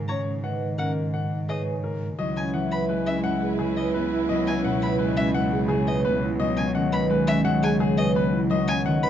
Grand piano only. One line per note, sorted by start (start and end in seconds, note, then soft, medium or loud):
0.09 0.31 C#5 medium
0.44 0.66 F#5 medium
0.78 1.01 A#4 soft
1.14 1.36 F#5 medium
1.49 1.72 G#4 medium
1.84 2.07 A#4 soft
2.19 2.42 D#5 medium
2.54 2.77 F#5 medium
2.89 3.12 B4 medium
3.24 3.47 F#5 medium
3.59 3.82 G#4 medium
3.94 4.17 B4 medium
4.29 4.52 D#5 medium
4.65 4.87 F#5 medium
4.99 5.22 B4 medium
5.34 5.57 F#5 medium
5.68 5.92 G#4 medium
6.05 6.28 B4 medium
6.40 6.63 D#5 medium
6.75 6.98 F#5 medium
7.10 7.33 B4 medium
7.45 7.68 F#5 loud
7.80 8.03 G#4 medium
8.16 8.38 B4 medium
8.51 8.73 D#5 loud
8.86 9.08 F#5 medium